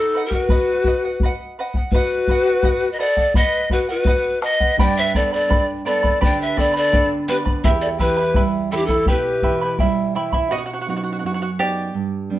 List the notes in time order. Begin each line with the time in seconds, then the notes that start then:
Already playing: D#4 A4 B4 D#5 F#5
0.15 B4 D#5 F#5
0.26 G4 A#4
0.31 F#4 D#5 F#5, bombo low
0.44 B4
0.49 B4 D#5 F#5, bombo low
0.84 B4 D#5 F#5, bombo low
1.04 D#5 F#5
1.20 B4, bombo low
1.24 D#5 F#5
1.59 B4 D#5 F#5
1.74 F#5, bombo low
1.78 D#5
1.91 F#4 B4 D#5 F#5, bombo low
2.28 B4 D#5 F#5, bombo low
2.47 D#5 F#5
2.63 B4 D#5 F#5, bombo low
2.92 B4 D#5
2.99 A4 B4 D5 D#5 F#5
3.17 D#5 F#5, bombo low
3.34 B4 D#5 F#5, bombo low
3.70 F#4 B4 D#5 F#5, bombo low
3.89 F#4 B4 D#5 F#5
4.05 B4 D#5 F#5, bombo low
4.41 B4 D#5 F#5, bombo rim
4.47 B4
4.60 D#5 F#5, bombo low
4.77 G2 G4 B4 D5 G5 B5, bombo low
4.81 D5
4.97 B4 E5
5.14 B3 A4 B4 D5 G5 B5, bombo low
5.33 A4 B4 D5 B5
5.49 D4 B4 D5 G5 B5, bombo low
5.85 B3 A4 B4 D5 G5 B5
6.03 B4 D5 B5, bombo low
6.21 D3 G4 B4 D5 G5 B5, bombo low
6.42 B4 E5
6.56 B3 A4 B4 D5 G5 B5, bombo low
6.74 A4 B4 D5 B5
6.92 D4 B4 D5 G5 B5, bombo low
7.28 B3 G4 B4 D5 G5 B5
7.45 B4 D5 B5, bombo low
7.64 E2 E4 G4 B4 E5 G5 B5, bombo low
7.82 A4 D5
7.99 E3 E4 G4 B4 E5 G5 B5, bombo low
8.17 E4 E5 B5
8.34 G3 E4 E5 G5 B5, bombo low
8.71 E3 E4 A4 E5 G5 B5
8.75 E4 G4
8.81 D4
8.86 E4 A4 B5, bombo low
8.90 E4 E5
9.06 B2 E4 G4 B4 E5 G5 B5, bombo low
9.11 G4
9.42 E3 E4 E5 G5 B5, bombo low
9.62 E4 E5 B5
9.79 G3 E4 E5 G5 B5, bombo low
10.15 E3 E4 E5 G5 B5
10.32 E4 E5 B5, bombo low
10.51 B2 F#4 D#5
10.66 F#4
10.74 F#4
10.81 F#4
10.88 F#3 B3 D#4 F#4
10.97 F#4
11.03 F#4
11.12 F#4
11.19 F#2 F#4
11.26 F#4
11.34 F#4
11.42 F#4
11.59 B3 D#4 F#4 G4 D5
11.94 G2
12.30 G3 B3 D4